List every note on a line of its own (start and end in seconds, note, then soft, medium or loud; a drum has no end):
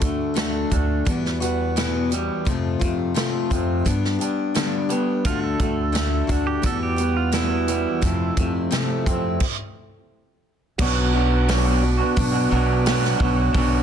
0.00 0.62 D2 medium
0.00 1.05 D3 medium
0.00 0.34 A3 soft
0.00 0.35 D4 soft
0.00 0.35 F#4 medium
0.00 kick medium
0.00 closed hi-hat medium
0.34 0.70 D3 medium
0.34 0.71 A3 medium
0.34 0.70 D4 medium
0.34 0.69 F#4 medium
0.34 snare loud
0.34 closed hi-hat medium
0.70 1.02 D2 medium
0.70 1.06 A3 soft
0.70 1.06 D4 soft
0.70 1.05 F#4 soft
0.70 kick medium
0.70 closed hi-hat soft
1.05 2.28 E2 medium
1.05 2.46 E2 medium
1.05 1.40 E3 medium
1.05 1.40 G3 medium
1.05 1.40 B3 medium
1.05 1.39 F#4 medium
1.05 kick medium
1.05 closed hi-hat medium
1.25 snare soft
1.40 1.76 E3 soft
1.40 1.76 G3 medium
1.40 1.76 B3 medium
1.40 1.75 F#4 medium
1.40 closed hi-hat medium
1.76 2.11 E2 medium
1.76 2.11 B2 medium
1.76 2.11 E3 medium
1.76 2.11 G3 medium
1.76 2.10 B3 medium
1.76 2.08 F#4 medium
1.76 snare loud
1.76 closed hi-hat medium
2.09 2.46 E3 soft
2.09 2.46 G3 soft
2.09 2.46 B3 medium
2.09 2.45 F#4 medium
2.09 closed hi-hat soft
2.45 2.80 F2 medium
2.45 2.77 F2 medium
2.45 2.81 C3 medium
2.45 2.81 F3 medium
2.45 2.81 A3 medium
2.45 2.80 C4 medium
2.45 2.78 F4 medium
2.45 kick medium
2.45 closed hi-hat medium
2.79 3.12 F2 medium
2.79 3.86 C3 medium
2.79 3.14 F3 soft
2.79 3.14 A3 soft
2.79 3.15 C4 soft
2.79 3.15 F4 medium
2.79 kick medium
2.79 closed hi-hat medium
3.14 3.50 F2 medium
3.14 3.50 C3 medium
3.14 3.50 F3 medium
3.14 3.50 A3 medium
3.14 3.50 C4 medium
3.14 3.49 F4 medium
3.14 snare loud
3.14 closed hi-hat medium
3.50 3.81 F2 medium
3.50 3.84 F3 medium
3.50 3.86 A3 soft
3.50 3.86 C4 soft
3.50 3.85 F4 medium
3.50 kick medium
3.50 closed hi-hat medium
3.85 5.25 G2 medium
3.85 4.16 G2 medium
3.85 4.20 G3 medium
3.85 4.20 B3 medium
3.85 4.19 D4 medium
3.85 4.18 G4 medium
3.85 kick medium
3.85 closed hi-hat medium
4.05 snare soft
4.19 4.54 G3 medium
4.19 4.54 B3 medium
4.19 4.55 D4 medium
4.19 4.54 G4 medium
4.19 closed hi-hat medium
4.54 4.89 G2 medium
4.54 4.89 D3 medium
4.54 4.90 G3 medium
4.54 4.90 B3 medium
4.54 4.89 D4 medium
4.54 4.88 G4 medium
4.54 snare loud
4.54 closed hi-hat medium
4.89 5.24 G3 soft
4.89 5.25 B3 soft
4.89 5.24 D4 soft
4.89 5.24 G4 medium
4.89 closed hi-hat medium
5.25 5.55 D2 medium
5.25 5.59 D3 medium
5.25 5.60 A3 medium
5.25 5.60 D4 medium
5.25 5.42 F4 medium
5.25 5.58 F#4 medium
5.25 kick medium
5.25 closed hi-hat medium
5.44 6.44 A4 medium
5.59 6.20 D2 medium
5.59 5.92 A3 soft
5.59 5.92 D4 medium
5.59 5.93 F#4 medium
5.59 kick medium
5.59 closed hi-hat medium
5.92 6.28 D3 medium
5.92 6.28 A3 medium
5.92 6.28 D4 medium
5.92 6.26 F#4 medium
5.92 snare loud
5.92 closed hi-hat medium
6.27 6.59 D2 medium
6.27 6.62 A3 soft
6.27 6.63 D4 medium
6.27 6.63 F#4 medium
6.27 kick medium
6.27 closed hi-hat medium
6.47 6.63 G4 medium
6.62 7.85 E2 loud
6.62 8.02 E2 medium
6.62 6.97 E3 medium
6.62 6.98 G3 medium
6.62 6.96 B3 medium
6.62 6.95 F#4 medium
6.62 kick medium
6.62 closed hi-hat medium
6.66 6.81 A4 medium
6.83 7.15 G4 medium
6.96 7.31 E3 medium
6.96 7.32 G3 medium
6.96 7.32 B3 medium
6.96 7.32 F#4 medium
6.96 closed hi-hat medium
7.17 7.33 F4 medium
7.32 7.67 E2 medium
7.32 7.67 B2 medium
7.32 7.67 E3 medium
7.32 7.68 G3 medium
7.32 7.68 B3 medium
7.32 9.38 E4 medium
7.32 7.66 F#4 medium
7.32 snare loud
7.32 closed hi-hat medium
7.68 8.01 E3 soft
7.68 8.03 G3 medium
7.68 8.03 B3 medium
7.68 8.02 F#4 medium
7.68 closed hi-hat medium
8.01 8.36 F2 medium
8.01 8.33 F2 medium
8.01 8.37 C3 medium
8.01 8.37 F3 medium
8.01 8.37 A3 medium
8.01 8.36 C4 medium
8.01 kick medium
8.01 closed hi-hat medium
8.37 8.67 F2 medium
8.37 9.41 C3 medium
8.37 8.69 F3 soft
8.37 8.70 A3 medium
8.37 8.71 C4 medium
8.37 kick medium
8.37 closed hi-hat medium
8.71 9.06 F2 medium
8.71 9.06 C3 medium
8.71 9.06 F3 medium
8.71 9.06 A3 medium
8.71 9.06 C4 medium
8.71 snare loud
8.71 closed hi-hat medium
9.06 9.37 F2 medium
9.06 9.42 F3 soft
9.06 9.42 A3 soft
9.06 9.41 C4 medium
9.06 kick medium
9.06 closed hi-hat soft
9.40 kick loud
9.40 crash medium
10.78 11.99 B1 medium
10.78 11.13 B2 medium
10.78 11.13 F#3 medium
10.78 11.14 B3 medium
10.78 11.13 D4 medium
10.78 13.50 F#4 medium
10.78 11.11 F#4 medium
10.78 13.83 B4 medium
10.78 13.50 B4 medium
10.78 13.83 D5 medium
10.78 13.51 D5 medium
10.78 13.52 F#5 medium
10.78 13.83 D6 medium
10.78 kick loud
10.78 crash loud
11.13 11.48 F#3 medium
11.13 11.48 B3 soft
11.13 11.48 D4 medium
11.13 11.47 F#4 medium
11.17 11.50 F#4 medium
11.48 12.84 B2 medium
11.48 11.83 F#3 medium
11.48 11.83 B3 medium
11.48 11.83 D4 medium
11.48 11.82 F#4 medium
11.48 snare loud
11.48 open hi-hat medium
11.65 11.83 B3 soft
11.65 11.83 D4 medium
11.65 11.84 F#4 medium
11.83 12.16 B3 soft
11.83 12.17 D4 medium
11.83 12.17 F#4 medium
11.83 muted clean electric guitar stroke soft
11.97 12.35 B3 medium
11.97 12.33 D4 medium
11.97 12.31 F#4 medium
12.16 12.47 B1 loud
12.16 12.51 B2 loud
12.16 12.51 F#3 medium
12.16 12.51 B3 medium
12.16 12.52 D4 loud
12.16 12.50 F#4 loud
12.16 kick loud
12.16 open hi-hat medium
12.32 12.50 B3 medium
12.32 12.51 D4 medium
12.32 12.51 F#4 medium
12.50 13.11 B1 medium
12.50 12.85 F#3 medium
12.50 12.87 B3 medium
12.50 12.87 D4 medium
12.50 12.85 F#4 medium
12.55 12.86 B3 medium
12.85 13.52 B2 medium
12.85 13.20 F#3 medium
12.85 13.20 B3 medium
12.85 13.21 D4 medium
12.85 13.19 F#4 medium
12.85 snare loud
12.85 open hi-hat medium
13.05 snare soft
13.18 13.50 B1 loud
13.18 13.53 F#3 medium
13.18 13.39 B3 medium
13.18 13.54 F#4 medium
13.18 kick medium
13.22 13.55 B3 soft
13.22 13.55 D4 medium
13.36 13.54 B3 soft
13.36 13.54 D4 medium
13.36 13.55 F#4 medium
13.52 13.83 B1 medium
13.52 13.83 B2 medium
13.52 13.83 F#3 medium
13.52 13.83 F#4 medium
13.52 13.83 B4 medium
13.52 13.83 E5 medium
13.52 kick loud
13.52 open hi-hat medium
13.56 13.83 B3 medium
13.56 13.83 D4 medium
13.56 13.83 F#4 medium
13.56 13.83 D5 medium